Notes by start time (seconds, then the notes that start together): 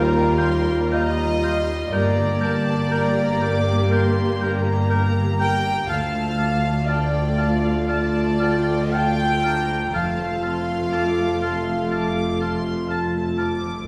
Already playing: D#2 D#3 G3 A#3 D#4 F4 G4 A#4 F5 G5 A#5
0.13 G5
0.38 F5 C6 G6
0.67 A#4
0.92 F4 D#5 F5 A#5 G6
1.19 D#4
1.42 A#3 F5 C6 G6
1.69 D#4
1.92 G1 G2 A#3 G4 A#4 D5 A#5 G6
2.18 D3
2.40 A#3 A#4 A5 G6
2.67 D4
2.91 G4 A#4 A#5 G6
3.17 A#4
3.41 A#4 D5 D6 G6
3.67 G5
3.91 A#4 D5 C6 G6
4.18 G5
4.41 A#4 D5 A#5 G6
4.67 A#4
4.90 D4 A#4 G6
5.16 D3
5.40 A#3 A#4 G5 G6
5.66 D3
5.88 D2 D3 A3 F4 F5 A5 F6
6.15 A3
6.37 D4 A5 F6
6.64 F4
6.87 D5 G5 A5 F6
7.15 D5
7.38 F5 A5 F6
7.86 D5 F5 A5 F6
8.40 F5 G5 A5 F6
8.68 D5
8.92 F4 F5 G5 A5 F6
9.20 A3
9.43 D4 A5 A#5 F6
9.70 A3
9.93 F1 F2 F3 A3 F4 F5 A5 F6
10.19 A3
10.43 C4 A5 C6 F6
10.68 F4
10.92 A4 A5 D6 F6
11.17 C5
11.41 F5 A5 C6 F6
11.67 A5
11.91 F5 A5 D6 F6
12.16 A5
12.40 F5 A5 C6 F6
12.66 C5
12.88 F4 A5 F6
13.16 A3
13.38 C4 A5 D6 F6
13.64 A3